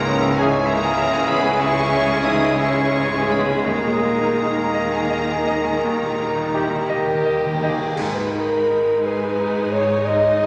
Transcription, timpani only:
5.83 5.91 D#3 soft
5.92 5.98 D#3 soft
6.00 6.06 D#3 soft
6.07 6.13 D#3 soft
6.14 6.21 D#3 medium
6.30 6.36 D#3 medium
6.37 6.44 D#3 medium
6.46 6.51 D#3 medium
6.52 6.58 D#3 medium
6.59 6.66 D#3 medium
6.67 6.73 D#3 medium
6.75 6.80 D#3 medium
6.89 6.96 D#3 medium
6.97 7.04 D#3 medium
7.06 7.12 D#3 medium
7.13 7.20 D#3 medium
7.21 7.27 D#3 medium
7.28 7.35 D#3 medium
7.36 7.44 D#3 medium
7.45 7.52 D#3 medium
7.53 7.60 D#3 loud
7.61 7.68 D#3 loud
7.69 7.76 D#3 loud
7.77 7.83 D#3 loud
7.84 7.91 D#3 loud
7.98 9.00 G#2 loud

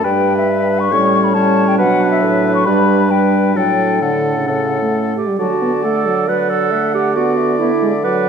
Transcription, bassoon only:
0.05 0.94 G2 medium
0.92 1.78 A2 soft
1.79 2.22 B2 medium
2.22 2.68 A2 soft
2.67 3.58 G2 soft
3.57 4.48 A2 soft
4.49 5.16 A2 soft
5.40 8.29 D3 soft

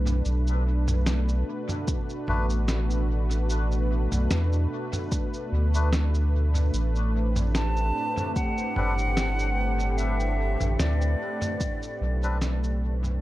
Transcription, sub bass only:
0.00 0.22 B1 loud
0.26 1.44 B1 loud
2.28 4.08 A1 loud
4.12 4.29 B1 medium
4.31 4.67 E2 medium
5.52 6.71 D2 loud
6.74 7.92 A1 loud
8.77 10.57 G1 loud
10.61 10.77 A1 medium
10.79 11.16 D2 medium
12.01 13.19 B1 loud

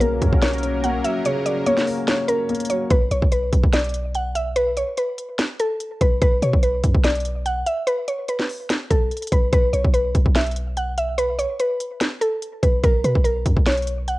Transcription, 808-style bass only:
0.00 0.20 B1 loud
0.22 0.32 F#2 loud
0.33 1.01 B1 loud
2.91 3.10 B1 loud
3.11 3.22 B1 loud
3.22 3.51 B1 loud
3.53 3.63 B1 loud
3.64 4.84 B1 loud
6.01 6.21 B1 loud
6.22 6.41 B1 loud
6.42 6.53 B2 loud
6.53 6.83 B1 loud
6.84 6.94 F#2 loud
6.95 7.64 B1 loud
8.91 9.10 B1 loud
9.32 9.52 B1 loud
9.53 9.73 B1 loud
9.73 9.84 B1 loud
9.84 10.14 B1 loud
10.15 10.25 B1 loud
10.26 11.46 B1 loud
12.63 12.83 B1 loud
12.84 13.04 B1 loud
13.04 13.15 B2 loud
13.15 13.45 B1 loud
13.46 13.56 F#2 loud
13.57 14.19 B1 loud

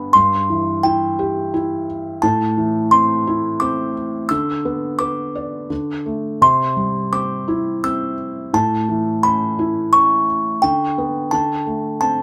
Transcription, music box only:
0.00 0.16 B5 medium
0.13 0.85 C6 medium
0.83 1.83 G5 medium
2.22 2.94 A5 medium
2.91 3.63 C6 medium
3.60 4.32 D6 medium
4.29 4.95 E6 medium
4.99 6.01 D6 medium
6.42 7.15 C6 medium
7.13 7.79 D6 medium
7.84 8.56 E6 medium
8.54 9.26 A5 medium
9.23 9.89 B5 medium
9.93 10.64 C#6 medium
10.62 11.34 G5 medium
11.31 12.00 A5 medium
12.01 12.23 A5 medium

